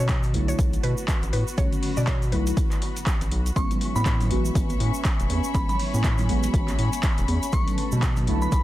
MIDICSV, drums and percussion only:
0, 0, Header, 1, 2, 480
1, 0, Start_track
1, 0, Key_signature, 3, "major"
1, 0, Tempo, 495868
1, 1528, Time_signature, 4, 2, 24, 8
1, 8357, End_track
2, 0, Start_track
2, 0, Title_t, "Drums"
2, 84, Note_on_c, 9, 82, 62
2, 87, Note_on_c, 9, 39, 127
2, 88, Note_on_c, 9, 36, 114
2, 89, Note_on_c, 9, 42, 79
2, 90, Note_on_c, 9, 38, 118
2, 90, Note_on_c, 9, 54, 89
2, 181, Note_off_c, 9, 82, 0
2, 184, Note_off_c, 9, 39, 0
2, 185, Note_off_c, 9, 36, 0
2, 186, Note_off_c, 9, 42, 0
2, 187, Note_off_c, 9, 38, 0
2, 187, Note_off_c, 9, 54, 0
2, 223, Note_on_c, 9, 82, 42
2, 230, Note_on_c, 9, 46, 65
2, 232, Note_on_c, 9, 42, 44
2, 320, Note_off_c, 9, 82, 0
2, 327, Note_off_c, 9, 46, 0
2, 329, Note_off_c, 9, 42, 0
2, 329, Note_on_c, 9, 46, 109
2, 330, Note_on_c, 9, 54, 69
2, 426, Note_off_c, 9, 46, 0
2, 427, Note_off_c, 9, 54, 0
2, 476, Note_on_c, 9, 82, 87
2, 568, Note_on_c, 9, 36, 125
2, 569, Note_on_c, 9, 42, 77
2, 570, Note_off_c, 9, 82, 0
2, 570, Note_on_c, 9, 54, 90
2, 570, Note_on_c, 9, 82, 70
2, 665, Note_off_c, 9, 36, 0
2, 665, Note_off_c, 9, 42, 0
2, 667, Note_off_c, 9, 54, 0
2, 667, Note_off_c, 9, 82, 0
2, 710, Note_on_c, 9, 82, 43
2, 711, Note_on_c, 9, 42, 49
2, 807, Note_off_c, 9, 42, 0
2, 807, Note_off_c, 9, 82, 0
2, 809, Note_on_c, 9, 46, 108
2, 810, Note_on_c, 9, 54, 71
2, 906, Note_off_c, 9, 46, 0
2, 907, Note_off_c, 9, 54, 0
2, 944, Note_on_c, 9, 82, 88
2, 1041, Note_off_c, 9, 82, 0
2, 1048, Note_on_c, 9, 36, 103
2, 1048, Note_on_c, 9, 39, 124
2, 1049, Note_on_c, 9, 82, 68
2, 1050, Note_on_c, 9, 38, 117
2, 1050, Note_on_c, 9, 42, 82
2, 1050, Note_on_c, 9, 54, 90
2, 1145, Note_off_c, 9, 36, 0
2, 1145, Note_off_c, 9, 39, 0
2, 1146, Note_off_c, 9, 38, 0
2, 1146, Note_off_c, 9, 42, 0
2, 1146, Note_off_c, 9, 54, 0
2, 1146, Note_off_c, 9, 82, 0
2, 1188, Note_on_c, 9, 82, 37
2, 1191, Note_on_c, 9, 42, 50
2, 1285, Note_off_c, 9, 82, 0
2, 1288, Note_off_c, 9, 42, 0
2, 1289, Note_on_c, 9, 46, 112
2, 1290, Note_on_c, 9, 54, 69
2, 1385, Note_off_c, 9, 46, 0
2, 1387, Note_off_c, 9, 54, 0
2, 1430, Note_on_c, 9, 82, 79
2, 1526, Note_off_c, 9, 82, 0
2, 1526, Note_on_c, 9, 82, 65
2, 1528, Note_on_c, 9, 36, 121
2, 1529, Note_on_c, 9, 42, 81
2, 1531, Note_on_c, 9, 54, 90
2, 1623, Note_off_c, 9, 82, 0
2, 1625, Note_off_c, 9, 36, 0
2, 1626, Note_off_c, 9, 42, 0
2, 1627, Note_off_c, 9, 54, 0
2, 1670, Note_on_c, 9, 42, 49
2, 1673, Note_on_c, 9, 82, 44
2, 1767, Note_off_c, 9, 42, 0
2, 1768, Note_on_c, 9, 46, 116
2, 1769, Note_off_c, 9, 82, 0
2, 1771, Note_off_c, 9, 46, 0
2, 1771, Note_on_c, 9, 46, 79
2, 1867, Note_off_c, 9, 46, 0
2, 1907, Note_on_c, 9, 82, 75
2, 2004, Note_off_c, 9, 82, 0
2, 2006, Note_on_c, 9, 39, 121
2, 2008, Note_on_c, 9, 36, 108
2, 2008, Note_on_c, 9, 42, 75
2, 2009, Note_on_c, 9, 38, 120
2, 2009, Note_on_c, 9, 54, 90
2, 2009, Note_on_c, 9, 82, 62
2, 2103, Note_off_c, 9, 39, 0
2, 2104, Note_off_c, 9, 36, 0
2, 2105, Note_off_c, 9, 42, 0
2, 2105, Note_off_c, 9, 82, 0
2, 2106, Note_off_c, 9, 38, 0
2, 2106, Note_off_c, 9, 54, 0
2, 2150, Note_on_c, 9, 46, 65
2, 2154, Note_on_c, 9, 82, 45
2, 2247, Note_off_c, 9, 46, 0
2, 2248, Note_on_c, 9, 46, 107
2, 2249, Note_on_c, 9, 54, 66
2, 2250, Note_off_c, 9, 82, 0
2, 2345, Note_off_c, 9, 46, 0
2, 2346, Note_off_c, 9, 54, 0
2, 2389, Note_on_c, 9, 82, 90
2, 2390, Note_on_c, 9, 42, 35
2, 2391, Note_off_c, 9, 42, 0
2, 2391, Note_on_c, 9, 42, 44
2, 2486, Note_off_c, 9, 82, 0
2, 2488, Note_off_c, 9, 42, 0
2, 2488, Note_on_c, 9, 36, 124
2, 2489, Note_on_c, 9, 42, 76
2, 2489, Note_on_c, 9, 54, 93
2, 2489, Note_on_c, 9, 82, 66
2, 2584, Note_off_c, 9, 36, 0
2, 2585, Note_off_c, 9, 82, 0
2, 2586, Note_off_c, 9, 42, 0
2, 2586, Note_off_c, 9, 54, 0
2, 2627, Note_on_c, 9, 82, 43
2, 2629, Note_on_c, 9, 39, 35
2, 2630, Note_on_c, 9, 42, 50
2, 2724, Note_off_c, 9, 82, 0
2, 2725, Note_off_c, 9, 39, 0
2, 2727, Note_off_c, 9, 42, 0
2, 2728, Note_on_c, 9, 46, 103
2, 2729, Note_on_c, 9, 38, 55
2, 2729, Note_on_c, 9, 54, 72
2, 2825, Note_off_c, 9, 46, 0
2, 2826, Note_off_c, 9, 38, 0
2, 2826, Note_off_c, 9, 54, 0
2, 2870, Note_on_c, 9, 42, 33
2, 2871, Note_off_c, 9, 42, 0
2, 2871, Note_on_c, 9, 42, 46
2, 2873, Note_on_c, 9, 82, 76
2, 2966, Note_on_c, 9, 39, 122
2, 2967, Note_off_c, 9, 42, 0
2, 2967, Note_on_c, 9, 36, 103
2, 2968, Note_on_c, 9, 42, 77
2, 2969, Note_on_c, 9, 38, 121
2, 2969, Note_on_c, 9, 54, 89
2, 2970, Note_off_c, 9, 82, 0
2, 2970, Note_on_c, 9, 82, 65
2, 3063, Note_off_c, 9, 39, 0
2, 3064, Note_off_c, 9, 36, 0
2, 3065, Note_off_c, 9, 42, 0
2, 3066, Note_off_c, 9, 38, 0
2, 3066, Note_off_c, 9, 54, 0
2, 3067, Note_off_c, 9, 82, 0
2, 3109, Note_on_c, 9, 82, 43
2, 3110, Note_on_c, 9, 42, 49
2, 3111, Note_off_c, 9, 42, 0
2, 3111, Note_on_c, 9, 42, 44
2, 3206, Note_off_c, 9, 82, 0
2, 3208, Note_off_c, 9, 42, 0
2, 3209, Note_on_c, 9, 46, 106
2, 3209, Note_on_c, 9, 54, 71
2, 3306, Note_off_c, 9, 46, 0
2, 3306, Note_off_c, 9, 54, 0
2, 3350, Note_on_c, 9, 42, 36
2, 3353, Note_on_c, 9, 82, 74
2, 3447, Note_off_c, 9, 42, 0
2, 3447, Note_on_c, 9, 36, 115
2, 3448, Note_on_c, 9, 42, 79
2, 3449, Note_on_c, 9, 54, 89
2, 3450, Note_off_c, 9, 82, 0
2, 3450, Note_on_c, 9, 82, 67
2, 3544, Note_off_c, 9, 36, 0
2, 3545, Note_off_c, 9, 42, 0
2, 3546, Note_off_c, 9, 54, 0
2, 3547, Note_off_c, 9, 82, 0
2, 3590, Note_on_c, 9, 42, 51
2, 3592, Note_on_c, 9, 82, 39
2, 3599, Note_on_c, 9, 64, 72
2, 3687, Note_off_c, 9, 42, 0
2, 3688, Note_on_c, 9, 46, 105
2, 3688, Note_on_c, 9, 54, 69
2, 3689, Note_off_c, 9, 82, 0
2, 3696, Note_off_c, 9, 64, 0
2, 3785, Note_off_c, 9, 46, 0
2, 3785, Note_off_c, 9, 54, 0
2, 3831, Note_on_c, 9, 63, 89
2, 3833, Note_on_c, 9, 82, 76
2, 3926, Note_on_c, 9, 39, 116
2, 3927, Note_off_c, 9, 82, 0
2, 3927, Note_on_c, 9, 36, 106
2, 3927, Note_on_c, 9, 82, 57
2, 3928, Note_off_c, 9, 63, 0
2, 3928, Note_on_c, 9, 38, 117
2, 3928, Note_on_c, 9, 42, 80
2, 3928, Note_on_c, 9, 54, 87
2, 4023, Note_off_c, 9, 39, 0
2, 4024, Note_off_c, 9, 36, 0
2, 4024, Note_off_c, 9, 82, 0
2, 4025, Note_off_c, 9, 38, 0
2, 4025, Note_off_c, 9, 42, 0
2, 4025, Note_off_c, 9, 54, 0
2, 4064, Note_on_c, 9, 64, 73
2, 4070, Note_on_c, 9, 42, 45
2, 4070, Note_on_c, 9, 46, 62
2, 4072, Note_on_c, 9, 82, 37
2, 4161, Note_off_c, 9, 64, 0
2, 4166, Note_off_c, 9, 46, 0
2, 4167, Note_off_c, 9, 42, 0
2, 4168, Note_off_c, 9, 82, 0
2, 4168, Note_on_c, 9, 46, 103
2, 4169, Note_on_c, 9, 54, 68
2, 4265, Note_off_c, 9, 46, 0
2, 4266, Note_off_c, 9, 54, 0
2, 4310, Note_on_c, 9, 82, 79
2, 4407, Note_off_c, 9, 82, 0
2, 4408, Note_on_c, 9, 36, 115
2, 4408, Note_on_c, 9, 54, 86
2, 4409, Note_on_c, 9, 42, 77
2, 4411, Note_on_c, 9, 82, 70
2, 4504, Note_off_c, 9, 36, 0
2, 4505, Note_off_c, 9, 54, 0
2, 4506, Note_off_c, 9, 42, 0
2, 4508, Note_off_c, 9, 82, 0
2, 4546, Note_on_c, 9, 63, 60
2, 4546, Note_on_c, 9, 82, 39
2, 4550, Note_on_c, 9, 42, 48
2, 4642, Note_off_c, 9, 63, 0
2, 4643, Note_off_c, 9, 82, 0
2, 4647, Note_off_c, 9, 42, 0
2, 4648, Note_on_c, 9, 46, 100
2, 4649, Note_on_c, 9, 54, 72
2, 4745, Note_off_c, 9, 46, 0
2, 4746, Note_off_c, 9, 54, 0
2, 4780, Note_on_c, 9, 82, 88
2, 4877, Note_off_c, 9, 82, 0
2, 4886, Note_on_c, 9, 82, 59
2, 4887, Note_on_c, 9, 39, 121
2, 4888, Note_on_c, 9, 36, 102
2, 4889, Note_on_c, 9, 38, 120
2, 4889, Note_on_c, 9, 42, 80
2, 4889, Note_on_c, 9, 54, 90
2, 4983, Note_off_c, 9, 82, 0
2, 4984, Note_off_c, 9, 39, 0
2, 4985, Note_off_c, 9, 36, 0
2, 4986, Note_off_c, 9, 38, 0
2, 4986, Note_off_c, 9, 42, 0
2, 4986, Note_off_c, 9, 54, 0
2, 5030, Note_on_c, 9, 42, 49
2, 5033, Note_on_c, 9, 82, 40
2, 5126, Note_off_c, 9, 42, 0
2, 5126, Note_on_c, 9, 63, 98
2, 5129, Note_on_c, 9, 46, 107
2, 5129, Note_on_c, 9, 54, 71
2, 5130, Note_off_c, 9, 82, 0
2, 5223, Note_off_c, 9, 63, 0
2, 5225, Note_off_c, 9, 46, 0
2, 5226, Note_off_c, 9, 54, 0
2, 5264, Note_on_c, 9, 82, 75
2, 5361, Note_off_c, 9, 82, 0
2, 5367, Note_on_c, 9, 82, 64
2, 5368, Note_on_c, 9, 36, 113
2, 5369, Note_on_c, 9, 42, 83
2, 5369, Note_on_c, 9, 54, 91
2, 5464, Note_off_c, 9, 36, 0
2, 5464, Note_off_c, 9, 82, 0
2, 5466, Note_off_c, 9, 42, 0
2, 5466, Note_off_c, 9, 54, 0
2, 5505, Note_on_c, 9, 64, 66
2, 5510, Note_on_c, 9, 42, 52
2, 5510, Note_on_c, 9, 82, 34
2, 5602, Note_off_c, 9, 64, 0
2, 5607, Note_off_c, 9, 42, 0
2, 5607, Note_off_c, 9, 82, 0
2, 5609, Note_on_c, 9, 46, 81
2, 5706, Note_off_c, 9, 46, 0
2, 5747, Note_on_c, 9, 63, 94
2, 5753, Note_on_c, 9, 82, 75
2, 5844, Note_off_c, 9, 63, 0
2, 5847, Note_on_c, 9, 39, 118
2, 5848, Note_off_c, 9, 82, 0
2, 5848, Note_on_c, 9, 36, 102
2, 5848, Note_on_c, 9, 82, 62
2, 5849, Note_on_c, 9, 38, 120
2, 5849, Note_on_c, 9, 42, 82
2, 5849, Note_on_c, 9, 54, 92
2, 5944, Note_off_c, 9, 36, 0
2, 5944, Note_off_c, 9, 39, 0
2, 5945, Note_off_c, 9, 82, 0
2, 5946, Note_off_c, 9, 38, 0
2, 5946, Note_off_c, 9, 42, 0
2, 5946, Note_off_c, 9, 54, 0
2, 5981, Note_on_c, 9, 82, 40
2, 5987, Note_on_c, 9, 64, 80
2, 5991, Note_on_c, 9, 46, 60
2, 6078, Note_off_c, 9, 82, 0
2, 6083, Note_off_c, 9, 64, 0
2, 6087, Note_off_c, 9, 46, 0
2, 6089, Note_on_c, 9, 46, 100
2, 6090, Note_on_c, 9, 54, 68
2, 6186, Note_off_c, 9, 46, 0
2, 6186, Note_off_c, 9, 54, 0
2, 6226, Note_on_c, 9, 82, 74
2, 6230, Note_on_c, 9, 42, 42
2, 6323, Note_off_c, 9, 82, 0
2, 6327, Note_off_c, 9, 42, 0
2, 6328, Note_on_c, 9, 36, 113
2, 6329, Note_on_c, 9, 42, 80
2, 6330, Note_on_c, 9, 54, 89
2, 6330, Note_on_c, 9, 82, 62
2, 6425, Note_off_c, 9, 36, 0
2, 6426, Note_off_c, 9, 42, 0
2, 6427, Note_off_c, 9, 54, 0
2, 6427, Note_off_c, 9, 82, 0
2, 6464, Note_on_c, 9, 63, 62
2, 6468, Note_on_c, 9, 82, 41
2, 6469, Note_on_c, 9, 39, 36
2, 6470, Note_on_c, 9, 42, 52
2, 6561, Note_off_c, 9, 63, 0
2, 6565, Note_off_c, 9, 39, 0
2, 6565, Note_off_c, 9, 82, 0
2, 6567, Note_off_c, 9, 42, 0
2, 6569, Note_on_c, 9, 38, 55
2, 6569, Note_on_c, 9, 46, 103
2, 6569, Note_on_c, 9, 54, 72
2, 6666, Note_off_c, 9, 38, 0
2, 6666, Note_off_c, 9, 46, 0
2, 6666, Note_off_c, 9, 54, 0
2, 6708, Note_on_c, 9, 82, 84
2, 6710, Note_on_c, 9, 42, 37
2, 6804, Note_off_c, 9, 82, 0
2, 6804, Note_on_c, 9, 82, 68
2, 6807, Note_off_c, 9, 42, 0
2, 6807, Note_on_c, 9, 39, 123
2, 6808, Note_on_c, 9, 36, 95
2, 6808, Note_on_c, 9, 38, 123
2, 6808, Note_on_c, 9, 54, 90
2, 6809, Note_on_c, 9, 42, 83
2, 6900, Note_off_c, 9, 82, 0
2, 6904, Note_off_c, 9, 39, 0
2, 6905, Note_off_c, 9, 36, 0
2, 6905, Note_off_c, 9, 38, 0
2, 6905, Note_off_c, 9, 54, 0
2, 6906, Note_off_c, 9, 42, 0
2, 6949, Note_on_c, 9, 82, 39
2, 6950, Note_on_c, 9, 42, 45
2, 7046, Note_off_c, 9, 82, 0
2, 7047, Note_off_c, 9, 42, 0
2, 7048, Note_on_c, 9, 54, 68
2, 7049, Note_on_c, 9, 46, 101
2, 7052, Note_on_c, 9, 63, 90
2, 7145, Note_off_c, 9, 54, 0
2, 7146, Note_off_c, 9, 46, 0
2, 7149, Note_off_c, 9, 63, 0
2, 7191, Note_on_c, 9, 42, 36
2, 7191, Note_on_c, 9, 82, 78
2, 7283, Note_off_c, 9, 82, 0
2, 7283, Note_on_c, 9, 82, 62
2, 7287, Note_off_c, 9, 42, 0
2, 7288, Note_on_c, 9, 36, 110
2, 7289, Note_on_c, 9, 42, 89
2, 7289, Note_on_c, 9, 54, 91
2, 7379, Note_off_c, 9, 82, 0
2, 7385, Note_off_c, 9, 36, 0
2, 7386, Note_off_c, 9, 42, 0
2, 7386, Note_off_c, 9, 54, 0
2, 7429, Note_on_c, 9, 64, 71
2, 7430, Note_on_c, 9, 42, 54
2, 7433, Note_on_c, 9, 82, 34
2, 7526, Note_off_c, 9, 64, 0
2, 7527, Note_off_c, 9, 42, 0
2, 7529, Note_on_c, 9, 46, 106
2, 7529, Note_on_c, 9, 54, 68
2, 7530, Note_off_c, 9, 82, 0
2, 7626, Note_off_c, 9, 46, 0
2, 7626, Note_off_c, 9, 54, 0
2, 7666, Note_on_c, 9, 82, 72
2, 7672, Note_on_c, 9, 63, 80
2, 7763, Note_off_c, 9, 82, 0
2, 7768, Note_on_c, 9, 36, 99
2, 7768, Note_on_c, 9, 39, 120
2, 7769, Note_off_c, 9, 63, 0
2, 7769, Note_on_c, 9, 42, 87
2, 7770, Note_on_c, 9, 38, 117
2, 7770, Note_on_c, 9, 54, 92
2, 7770, Note_on_c, 9, 82, 58
2, 7864, Note_off_c, 9, 39, 0
2, 7865, Note_off_c, 9, 36, 0
2, 7866, Note_off_c, 9, 42, 0
2, 7866, Note_off_c, 9, 82, 0
2, 7867, Note_off_c, 9, 38, 0
2, 7867, Note_off_c, 9, 54, 0
2, 7903, Note_on_c, 9, 82, 41
2, 7907, Note_on_c, 9, 64, 80
2, 7910, Note_on_c, 9, 46, 59
2, 7911, Note_on_c, 9, 42, 45
2, 8000, Note_off_c, 9, 82, 0
2, 8004, Note_off_c, 9, 64, 0
2, 8007, Note_off_c, 9, 46, 0
2, 8008, Note_off_c, 9, 42, 0
2, 8009, Note_on_c, 9, 46, 99
2, 8010, Note_on_c, 9, 54, 69
2, 8105, Note_off_c, 9, 46, 0
2, 8107, Note_off_c, 9, 54, 0
2, 8147, Note_on_c, 9, 82, 71
2, 8244, Note_off_c, 9, 82, 0
2, 8248, Note_on_c, 9, 36, 115
2, 8248, Note_on_c, 9, 82, 65
2, 8249, Note_on_c, 9, 54, 92
2, 8250, Note_on_c, 9, 42, 82
2, 8345, Note_off_c, 9, 36, 0
2, 8345, Note_off_c, 9, 82, 0
2, 8346, Note_off_c, 9, 42, 0
2, 8346, Note_off_c, 9, 54, 0
2, 8357, End_track
0, 0, End_of_file